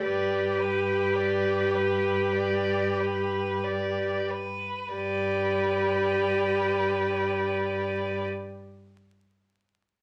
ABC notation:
X:1
M:4/4
L:1/16
Q:1/4=47
K:G
V:1 name="Violin"
B12- B2 z2 | d16 |]
V:2 name="Violin"
d2 B2 d2 B2 d2 B2 d2 B2 | B16 |]
V:3 name="Viola"
G12- G2 z2 | G16 |]
V:4 name="Cello" clef=bass
G,,12- G,,3 z | G,,16 |]